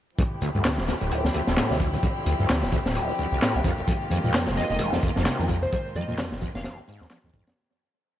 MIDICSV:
0, 0, Header, 1, 6, 480
1, 0, Start_track
1, 0, Key_signature, -1, "minor"
1, 0, Tempo, 461538
1, 193, Time_signature, 4, 2, 24, 8
1, 8519, End_track
2, 0, Start_track
2, 0, Title_t, "Synth pluck"
2, 0, Program_c, 0, 84
2, 4756, Note_on_c, 0, 75, 84
2, 4843, Note_off_c, 0, 75, 0
2, 4899, Note_on_c, 0, 75, 80
2, 4960, Note_off_c, 0, 75, 0
2, 5851, Note_on_c, 0, 72, 94
2, 5917, Note_off_c, 0, 72, 0
2, 5965, Note_on_c, 0, 72, 81
2, 6047, Note_off_c, 0, 72, 0
2, 6200, Note_on_c, 0, 75, 91
2, 6380, Note_off_c, 0, 75, 0
2, 6814, Note_on_c, 0, 77, 91
2, 6878, Note_off_c, 0, 77, 0
2, 6920, Note_on_c, 0, 77, 79
2, 7005, Note_off_c, 0, 77, 0
2, 8519, End_track
3, 0, Start_track
3, 0, Title_t, "String section"
3, 0, Program_c, 1, 48
3, 191, Note_on_c, 1, 64, 80
3, 193, Note_on_c, 1, 67, 96
3, 196, Note_on_c, 1, 53, 78
3, 198, Note_on_c, 1, 60, 78
3, 199, Note_on_c, 1, 50, 86
3, 3756, Note_off_c, 1, 64, 0
3, 3759, Note_off_c, 1, 53, 0
3, 3760, Note_off_c, 1, 50, 0
3, 3760, Note_off_c, 1, 60, 0
3, 3796, Note_on_c, 1, 51, 91
3, 3797, Note_on_c, 1, 65, 82
3, 3798, Note_on_c, 1, 56, 81
3, 3798, Note_on_c, 1, 58, 83
3, 7832, Note_off_c, 1, 67, 0
3, 7834, Note_off_c, 1, 51, 0
3, 7834, Note_off_c, 1, 65, 0
3, 7835, Note_off_c, 1, 56, 0
3, 7835, Note_off_c, 1, 58, 0
3, 8519, End_track
4, 0, Start_track
4, 0, Title_t, "Acid bass"
4, 0, Program_c, 2, 38
4, 197, Note_on_c, 2, 38, 83
4, 240, Note_off_c, 2, 38, 0
4, 435, Note_on_c, 2, 38, 108
4, 510, Note_off_c, 2, 38, 0
4, 576, Note_on_c, 2, 38, 82
4, 658, Note_off_c, 2, 38, 0
4, 677, Note_on_c, 2, 45, 84
4, 721, Note_off_c, 2, 45, 0
4, 916, Note_on_c, 2, 38, 76
4, 990, Note_off_c, 2, 38, 0
4, 1052, Note_on_c, 2, 26, 102
4, 1298, Note_on_c, 2, 41, 77
4, 1314, Note_off_c, 2, 26, 0
4, 1328, Note_off_c, 2, 41, 0
4, 1397, Note_on_c, 2, 38, 108
4, 1471, Note_off_c, 2, 38, 0
4, 1535, Note_on_c, 2, 38, 79
4, 1617, Note_off_c, 2, 38, 0
4, 1638, Note_on_c, 2, 45, 88
4, 1773, Note_on_c, 2, 50, 113
4, 1788, Note_off_c, 2, 45, 0
4, 1828, Note_off_c, 2, 50, 0
4, 1873, Note_on_c, 2, 38, 82
4, 1949, Note_off_c, 2, 38, 0
4, 2012, Note_on_c, 2, 26, 103
4, 2045, Note_off_c, 2, 26, 0
4, 2115, Note_on_c, 2, 38, 82
4, 2160, Note_off_c, 2, 38, 0
4, 2359, Note_on_c, 2, 38, 105
4, 2432, Note_off_c, 2, 38, 0
4, 2495, Note_on_c, 2, 38, 77
4, 2577, Note_off_c, 2, 38, 0
4, 2596, Note_on_c, 2, 45, 81
4, 2640, Note_off_c, 2, 45, 0
4, 2834, Note_on_c, 2, 38, 77
4, 2909, Note_off_c, 2, 38, 0
4, 2977, Note_on_c, 2, 26, 105
4, 3214, Note_on_c, 2, 41, 76
4, 3229, Note_off_c, 2, 26, 0
4, 3246, Note_off_c, 2, 41, 0
4, 3314, Note_on_c, 2, 38, 110
4, 3389, Note_off_c, 2, 38, 0
4, 3454, Note_on_c, 2, 38, 79
4, 3537, Note_off_c, 2, 38, 0
4, 3554, Note_on_c, 2, 45, 93
4, 3692, Note_on_c, 2, 50, 107
4, 3708, Note_off_c, 2, 45, 0
4, 3748, Note_off_c, 2, 50, 0
4, 3798, Note_on_c, 2, 41, 82
4, 3871, Note_off_c, 2, 41, 0
4, 3936, Note_on_c, 2, 29, 102
4, 3967, Note_off_c, 2, 29, 0
4, 4041, Note_on_c, 2, 41, 81
4, 4083, Note_off_c, 2, 41, 0
4, 4278, Note_on_c, 2, 41, 110
4, 4351, Note_off_c, 2, 41, 0
4, 4414, Note_on_c, 2, 41, 77
4, 4497, Note_off_c, 2, 41, 0
4, 4516, Note_on_c, 2, 48, 85
4, 4560, Note_off_c, 2, 48, 0
4, 4757, Note_on_c, 2, 41, 80
4, 4831, Note_off_c, 2, 41, 0
4, 4892, Note_on_c, 2, 29, 107
4, 5136, Note_on_c, 2, 44, 73
4, 5151, Note_off_c, 2, 29, 0
4, 5167, Note_off_c, 2, 44, 0
4, 5235, Note_on_c, 2, 41, 105
4, 5310, Note_off_c, 2, 41, 0
4, 5374, Note_on_c, 2, 41, 79
4, 5457, Note_off_c, 2, 41, 0
4, 5475, Note_on_c, 2, 48, 90
4, 5612, Note_on_c, 2, 53, 109
4, 5628, Note_off_c, 2, 48, 0
4, 5668, Note_off_c, 2, 53, 0
4, 5715, Note_on_c, 2, 41, 79
4, 5790, Note_off_c, 2, 41, 0
4, 5854, Note_on_c, 2, 29, 104
4, 5886, Note_off_c, 2, 29, 0
4, 5956, Note_on_c, 2, 41, 82
4, 6000, Note_off_c, 2, 41, 0
4, 6195, Note_on_c, 2, 41, 113
4, 6270, Note_off_c, 2, 41, 0
4, 6331, Note_on_c, 2, 41, 80
4, 6415, Note_off_c, 2, 41, 0
4, 6432, Note_on_c, 2, 48, 85
4, 6478, Note_off_c, 2, 48, 0
4, 6674, Note_on_c, 2, 41, 76
4, 6750, Note_off_c, 2, 41, 0
4, 6812, Note_on_c, 2, 29, 108
4, 7049, Note_on_c, 2, 44, 79
4, 7064, Note_off_c, 2, 29, 0
4, 7084, Note_off_c, 2, 44, 0
4, 7152, Note_on_c, 2, 44, 106
4, 7293, Note_on_c, 2, 41, 103
4, 7308, Note_off_c, 2, 44, 0
4, 7348, Note_off_c, 2, 41, 0
4, 7394, Note_on_c, 2, 53, 91
4, 7469, Note_off_c, 2, 53, 0
4, 7531, Note_on_c, 2, 41, 112
4, 7587, Note_off_c, 2, 41, 0
4, 7634, Note_on_c, 2, 41, 106
4, 7747, Note_off_c, 2, 41, 0
4, 7772, Note_on_c, 2, 41, 77
4, 7828, Note_off_c, 2, 41, 0
4, 8519, End_track
5, 0, Start_track
5, 0, Title_t, "Detuned saw bass"
5, 0, Program_c, 3, 39
5, 436, Note_on_c, 3, 38, 101
5, 517, Note_off_c, 3, 38, 0
5, 573, Note_on_c, 3, 43, 100
5, 633, Note_off_c, 3, 43, 0
5, 676, Note_on_c, 3, 38, 83
5, 814, Note_on_c, 3, 26, 102
5, 830, Note_off_c, 3, 38, 0
5, 943, Note_off_c, 3, 26, 0
5, 1058, Note_on_c, 3, 26, 84
5, 1156, Note_off_c, 3, 26, 0
5, 1162, Note_on_c, 3, 38, 44
5, 1268, Note_off_c, 3, 38, 0
5, 1294, Note_on_c, 3, 38, 104
5, 1354, Note_off_c, 3, 38, 0
5, 1536, Note_on_c, 3, 26, 93
5, 1664, Note_off_c, 3, 26, 0
5, 1771, Note_on_c, 3, 38, 101
5, 2048, Note_off_c, 3, 38, 0
5, 2354, Note_on_c, 3, 38, 103
5, 2436, Note_off_c, 3, 38, 0
5, 2494, Note_on_c, 3, 43, 98
5, 2554, Note_off_c, 3, 43, 0
5, 2599, Note_on_c, 3, 38, 90
5, 2736, Note_on_c, 3, 26, 101
5, 2752, Note_off_c, 3, 38, 0
5, 2864, Note_off_c, 3, 26, 0
5, 2976, Note_on_c, 3, 26, 83
5, 3103, Note_off_c, 3, 26, 0
5, 3453, Note_on_c, 3, 36, 96
5, 3513, Note_off_c, 3, 36, 0
5, 3695, Note_on_c, 3, 36, 92
5, 3754, Note_off_c, 3, 36, 0
5, 3789, Note_on_c, 3, 41, 87
5, 3874, Note_off_c, 3, 41, 0
5, 4270, Note_on_c, 3, 41, 103
5, 4354, Note_off_c, 3, 41, 0
5, 4410, Note_on_c, 3, 46, 104
5, 4472, Note_off_c, 3, 46, 0
5, 4509, Note_on_c, 3, 41, 88
5, 4649, Note_on_c, 3, 29, 96
5, 4664, Note_off_c, 3, 41, 0
5, 4780, Note_off_c, 3, 29, 0
5, 4891, Note_on_c, 3, 29, 86
5, 4984, Note_off_c, 3, 29, 0
5, 4990, Note_on_c, 3, 41, 44
5, 5102, Note_off_c, 3, 41, 0
5, 5128, Note_on_c, 3, 41, 99
5, 5191, Note_off_c, 3, 41, 0
5, 5370, Note_on_c, 3, 29, 93
5, 5501, Note_off_c, 3, 29, 0
5, 5609, Note_on_c, 3, 41, 103
5, 5887, Note_off_c, 3, 41, 0
5, 6191, Note_on_c, 3, 41, 106
5, 6275, Note_off_c, 3, 41, 0
5, 6322, Note_on_c, 3, 46, 95
5, 6388, Note_off_c, 3, 46, 0
5, 6426, Note_on_c, 3, 41, 90
5, 6562, Note_on_c, 3, 29, 100
5, 6577, Note_off_c, 3, 41, 0
5, 6697, Note_off_c, 3, 29, 0
5, 6809, Note_on_c, 3, 29, 81
5, 6940, Note_off_c, 3, 29, 0
5, 7289, Note_on_c, 3, 39, 93
5, 7351, Note_off_c, 3, 39, 0
5, 7533, Note_on_c, 3, 39, 94
5, 7593, Note_off_c, 3, 39, 0
5, 7629, Note_on_c, 3, 44, 91
5, 7714, Note_off_c, 3, 44, 0
5, 8519, End_track
6, 0, Start_track
6, 0, Title_t, "Drums"
6, 191, Note_on_c, 9, 82, 48
6, 193, Note_on_c, 9, 36, 114
6, 195, Note_on_c, 9, 42, 90
6, 295, Note_off_c, 9, 82, 0
6, 297, Note_off_c, 9, 36, 0
6, 299, Note_off_c, 9, 42, 0
6, 431, Note_on_c, 9, 82, 77
6, 435, Note_on_c, 9, 42, 67
6, 535, Note_off_c, 9, 82, 0
6, 539, Note_off_c, 9, 42, 0
6, 570, Note_on_c, 9, 82, 33
6, 671, Note_off_c, 9, 82, 0
6, 671, Note_on_c, 9, 39, 104
6, 671, Note_on_c, 9, 82, 44
6, 675, Note_on_c, 9, 42, 90
6, 676, Note_on_c, 9, 38, 118
6, 775, Note_off_c, 9, 39, 0
6, 775, Note_off_c, 9, 82, 0
6, 779, Note_off_c, 9, 42, 0
6, 780, Note_off_c, 9, 38, 0
6, 811, Note_on_c, 9, 38, 53
6, 911, Note_on_c, 9, 82, 75
6, 914, Note_on_c, 9, 42, 64
6, 915, Note_off_c, 9, 38, 0
6, 919, Note_on_c, 9, 38, 42
6, 1015, Note_off_c, 9, 82, 0
6, 1018, Note_off_c, 9, 42, 0
6, 1023, Note_off_c, 9, 38, 0
6, 1050, Note_on_c, 9, 42, 45
6, 1052, Note_on_c, 9, 82, 31
6, 1154, Note_off_c, 9, 42, 0
6, 1156, Note_off_c, 9, 82, 0
6, 1156, Note_on_c, 9, 82, 45
6, 1159, Note_on_c, 9, 42, 84
6, 1260, Note_off_c, 9, 82, 0
6, 1263, Note_off_c, 9, 42, 0
6, 1291, Note_on_c, 9, 82, 30
6, 1296, Note_on_c, 9, 38, 54
6, 1395, Note_off_c, 9, 82, 0
6, 1395, Note_on_c, 9, 82, 81
6, 1397, Note_on_c, 9, 42, 78
6, 1400, Note_off_c, 9, 38, 0
6, 1499, Note_off_c, 9, 82, 0
6, 1501, Note_off_c, 9, 42, 0
6, 1531, Note_on_c, 9, 38, 51
6, 1534, Note_on_c, 9, 82, 34
6, 1633, Note_off_c, 9, 38, 0
6, 1633, Note_on_c, 9, 38, 110
6, 1634, Note_off_c, 9, 82, 0
6, 1634, Note_on_c, 9, 39, 112
6, 1634, Note_on_c, 9, 82, 44
6, 1636, Note_on_c, 9, 42, 85
6, 1737, Note_off_c, 9, 38, 0
6, 1738, Note_off_c, 9, 39, 0
6, 1738, Note_off_c, 9, 82, 0
6, 1740, Note_off_c, 9, 42, 0
6, 1779, Note_on_c, 9, 38, 38
6, 1872, Note_on_c, 9, 36, 88
6, 1872, Note_on_c, 9, 42, 63
6, 1876, Note_on_c, 9, 82, 84
6, 1883, Note_off_c, 9, 38, 0
6, 1976, Note_off_c, 9, 36, 0
6, 1976, Note_off_c, 9, 42, 0
6, 1980, Note_off_c, 9, 82, 0
6, 2014, Note_on_c, 9, 82, 32
6, 2017, Note_on_c, 9, 42, 42
6, 2112, Note_on_c, 9, 36, 109
6, 2113, Note_off_c, 9, 42, 0
6, 2113, Note_on_c, 9, 42, 84
6, 2118, Note_off_c, 9, 82, 0
6, 2119, Note_on_c, 9, 82, 46
6, 2216, Note_off_c, 9, 36, 0
6, 2217, Note_off_c, 9, 42, 0
6, 2223, Note_off_c, 9, 82, 0
6, 2353, Note_on_c, 9, 42, 81
6, 2358, Note_on_c, 9, 82, 77
6, 2457, Note_off_c, 9, 42, 0
6, 2462, Note_off_c, 9, 82, 0
6, 2495, Note_on_c, 9, 82, 33
6, 2593, Note_on_c, 9, 42, 96
6, 2595, Note_off_c, 9, 82, 0
6, 2595, Note_on_c, 9, 39, 107
6, 2595, Note_on_c, 9, 82, 47
6, 2596, Note_on_c, 9, 38, 127
6, 2697, Note_off_c, 9, 42, 0
6, 2699, Note_off_c, 9, 39, 0
6, 2699, Note_off_c, 9, 82, 0
6, 2700, Note_off_c, 9, 38, 0
6, 2730, Note_on_c, 9, 38, 52
6, 2833, Note_on_c, 9, 42, 64
6, 2834, Note_off_c, 9, 38, 0
6, 2834, Note_on_c, 9, 36, 90
6, 2835, Note_on_c, 9, 82, 79
6, 2937, Note_off_c, 9, 42, 0
6, 2938, Note_off_c, 9, 36, 0
6, 2939, Note_off_c, 9, 82, 0
6, 2973, Note_on_c, 9, 38, 58
6, 2974, Note_on_c, 9, 82, 34
6, 3070, Note_on_c, 9, 42, 83
6, 3074, Note_off_c, 9, 82, 0
6, 3074, Note_on_c, 9, 82, 44
6, 3077, Note_off_c, 9, 38, 0
6, 3174, Note_off_c, 9, 42, 0
6, 3178, Note_off_c, 9, 82, 0
6, 3210, Note_on_c, 9, 82, 32
6, 3311, Note_off_c, 9, 82, 0
6, 3311, Note_on_c, 9, 82, 80
6, 3415, Note_off_c, 9, 82, 0
6, 3454, Note_on_c, 9, 82, 35
6, 3555, Note_off_c, 9, 82, 0
6, 3555, Note_on_c, 9, 39, 109
6, 3555, Note_on_c, 9, 82, 44
6, 3560, Note_on_c, 9, 38, 119
6, 3563, Note_on_c, 9, 42, 91
6, 3659, Note_off_c, 9, 39, 0
6, 3659, Note_off_c, 9, 82, 0
6, 3664, Note_off_c, 9, 38, 0
6, 3667, Note_off_c, 9, 42, 0
6, 3789, Note_on_c, 9, 36, 90
6, 3793, Note_on_c, 9, 42, 69
6, 3795, Note_on_c, 9, 82, 83
6, 3893, Note_off_c, 9, 36, 0
6, 3897, Note_off_c, 9, 42, 0
6, 3899, Note_off_c, 9, 82, 0
6, 3931, Note_on_c, 9, 82, 34
6, 4032, Note_off_c, 9, 82, 0
6, 4032, Note_on_c, 9, 36, 114
6, 4032, Note_on_c, 9, 82, 46
6, 4039, Note_on_c, 9, 42, 94
6, 4136, Note_off_c, 9, 36, 0
6, 4136, Note_off_c, 9, 82, 0
6, 4143, Note_off_c, 9, 42, 0
6, 4265, Note_on_c, 9, 63, 94
6, 4270, Note_on_c, 9, 82, 77
6, 4277, Note_on_c, 9, 42, 78
6, 4369, Note_off_c, 9, 63, 0
6, 4374, Note_off_c, 9, 82, 0
6, 4381, Note_off_c, 9, 42, 0
6, 4408, Note_on_c, 9, 82, 32
6, 4508, Note_off_c, 9, 82, 0
6, 4508, Note_on_c, 9, 39, 113
6, 4508, Note_on_c, 9, 82, 42
6, 4513, Note_on_c, 9, 42, 80
6, 4518, Note_on_c, 9, 38, 106
6, 4612, Note_off_c, 9, 39, 0
6, 4612, Note_off_c, 9, 82, 0
6, 4617, Note_off_c, 9, 42, 0
6, 4622, Note_off_c, 9, 38, 0
6, 4648, Note_on_c, 9, 38, 52
6, 4649, Note_on_c, 9, 64, 88
6, 4748, Note_on_c, 9, 82, 75
6, 4752, Note_off_c, 9, 38, 0
6, 4753, Note_off_c, 9, 64, 0
6, 4753, Note_on_c, 9, 38, 40
6, 4757, Note_on_c, 9, 42, 62
6, 4852, Note_off_c, 9, 82, 0
6, 4857, Note_off_c, 9, 38, 0
6, 4861, Note_off_c, 9, 42, 0
6, 4885, Note_on_c, 9, 82, 32
6, 4890, Note_on_c, 9, 42, 41
6, 4980, Note_off_c, 9, 42, 0
6, 4980, Note_on_c, 9, 42, 92
6, 4984, Note_on_c, 9, 64, 79
6, 4988, Note_off_c, 9, 82, 0
6, 4988, Note_on_c, 9, 82, 44
6, 4993, Note_on_c, 9, 63, 65
6, 5084, Note_off_c, 9, 42, 0
6, 5088, Note_off_c, 9, 64, 0
6, 5092, Note_off_c, 9, 82, 0
6, 5097, Note_off_c, 9, 63, 0
6, 5125, Note_on_c, 9, 38, 51
6, 5125, Note_on_c, 9, 82, 30
6, 5226, Note_off_c, 9, 82, 0
6, 5226, Note_on_c, 9, 82, 79
6, 5229, Note_off_c, 9, 38, 0
6, 5232, Note_on_c, 9, 36, 88
6, 5235, Note_on_c, 9, 42, 66
6, 5330, Note_off_c, 9, 82, 0
6, 5336, Note_off_c, 9, 36, 0
6, 5339, Note_off_c, 9, 42, 0
6, 5363, Note_on_c, 9, 82, 34
6, 5367, Note_on_c, 9, 38, 50
6, 5466, Note_off_c, 9, 38, 0
6, 5466, Note_on_c, 9, 38, 121
6, 5467, Note_off_c, 9, 82, 0
6, 5468, Note_on_c, 9, 39, 114
6, 5468, Note_on_c, 9, 42, 87
6, 5468, Note_on_c, 9, 82, 44
6, 5570, Note_off_c, 9, 38, 0
6, 5572, Note_off_c, 9, 39, 0
6, 5572, Note_off_c, 9, 42, 0
6, 5572, Note_off_c, 9, 82, 0
6, 5604, Note_on_c, 9, 38, 35
6, 5607, Note_on_c, 9, 63, 105
6, 5707, Note_on_c, 9, 64, 85
6, 5707, Note_on_c, 9, 82, 77
6, 5708, Note_off_c, 9, 38, 0
6, 5711, Note_off_c, 9, 63, 0
6, 5713, Note_on_c, 9, 36, 91
6, 5713, Note_on_c, 9, 42, 66
6, 5811, Note_off_c, 9, 64, 0
6, 5811, Note_off_c, 9, 82, 0
6, 5817, Note_off_c, 9, 36, 0
6, 5817, Note_off_c, 9, 42, 0
6, 5845, Note_on_c, 9, 82, 34
6, 5851, Note_on_c, 9, 42, 40
6, 5948, Note_off_c, 9, 82, 0
6, 5948, Note_on_c, 9, 82, 45
6, 5951, Note_off_c, 9, 42, 0
6, 5951, Note_on_c, 9, 42, 81
6, 5956, Note_on_c, 9, 36, 107
6, 6052, Note_off_c, 9, 82, 0
6, 6055, Note_off_c, 9, 42, 0
6, 6060, Note_off_c, 9, 36, 0
6, 6189, Note_on_c, 9, 82, 76
6, 6197, Note_on_c, 9, 42, 68
6, 6198, Note_on_c, 9, 63, 105
6, 6293, Note_off_c, 9, 82, 0
6, 6301, Note_off_c, 9, 42, 0
6, 6302, Note_off_c, 9, 63, 0
6, 6330, Note_on_c, 9, 82, 32
6, 6430, Note_off_c, 9, 82, 0
6, 6430, Note_on_c, 9, 39, 109
6, 6430, Note_on_c, 9, 82, 42
6, 6431, Note_on_c, 9, 38, 109
6, 6436, Note_on_c, 9, 42, 88
6, 6534, Note_off_c, 9, 39, 0
6, 6534, Note_off_c, 9, 82, 0
6, 6535, Note_off_c, 9, 38, 0
6, 6540, Note_off_c, 9, 42, 0
6, 6569, Note_on_c, 9, 64, 80
6, 6569, Note_on_c, 9, 82, 29
6, 6572, Note_on_c, 9, 38, 51
6, 6668, Note_off_c, 9, 82, 0
6, 6668, Note_on_c, 9, 82, 74
6, 6671, Note_on_c, 9, 42, 60
6, 6673, Note_off_c, 9, 64, 0
6, 6676, Note_off_c, 9, 38, 0
6, 6678, Note_on_c, 9, 36, 90
6, 6772, Note_off_c, 9, 82, 0
6, 6775, Note_off_c, 9, 42, 0
6, 6782, Note_off_c, 9, 36, 0
6, 6805, Note_on_c, 9, 82, 31
6, 6815, Note_on_c, 9, 38, 55
6, 6907, Note_off_c, 9, 82, 0
6, 6907, Note_on_c, 9, 82, 43
6, 6909, Note_off_c, 9, 38, 0
6, 6909, Note_on_c, 9, 38, 110
6, 6913, Note_on_c, 9, 42, 76
6, 6916, Note_on_c, 9, 64, 77
6, 6918, Note_on_c, 9, 63, 63
6, 7011, Note_off_c, 9, 82, 0
6, 7013, Note_off_c, 9, 38, 0
6, 7017, Note_off_c, 9, 42, 0
6, 7020, Note_off_c, 9, 64, 0
6, 7022, Note_off_c, 9, 63, 0
6, 7045, Note_on_c, 9, 82, 27
6, 7148, Note_off_c, 9, 82, 0
6, 7148, Note_on_c, 9, 82, 76
6, 7159, Note_on_c, 9, 42, 65
6, 7252, Note_off_c, 9, 82, 0
6, 7263, Note_off_c, 9, 42, 0
6, 7287, Note_on_c, 9, 82, 32
6, 7294, Note_on_c, 9, 38, 45
6, 7387, Note_off_c, 9, 82, 0
6, 7387, Note_on_c, 9, 39, 114
6, 7387, Note_on_c, 9, 82, 43
6, 7388, Note_off_c, 9, 38, 0
6, 7388, Note_on_c, 9, 38, 120
6, 7393, Note_on_c, 9, 42, 85
6, 7491, Note_off_c, 9, 39, 0
6, 7491, Note_off_c, 9, 82, 0
6, 7492, Note_off_c, 9, 38, 0
6, 7497, Note_off_c, 9, 42, 0
6, 7526, Note_on_c, 9, 63, 86
6, 7630, Note_off_c, 9, 63, 0
6, 7630, Note_on_c, 9, 36, 88
6, 7632, Note_on_c, 9, 82, 78
6, 7635, Note_on_c, 9, 42, 64
6, 7645, Note_on_c, 9, 64, 78
6, 7734, Note_off_c, 9, 36, 0
6, 7736, Note_off_c, 9, 82, 0
6, 7739, Note_off_c, 9, 42, 0
6, 7749, Note_off_c, 9, 64, 0
6, 7769, Note_on_c, 9, 42, 82
6, 7771, Note_on_c, 9, 82, 31
6, 7774, Note_on_c, 9, 38, 109
6, 7873, Note_off_c, 9, 42, 0
6, 7875, Note_off_c, 9, 82, 0
6, 7878, Note_off_c, 9, 38, 0
6, 8519, End_track
0, 0, End_of_file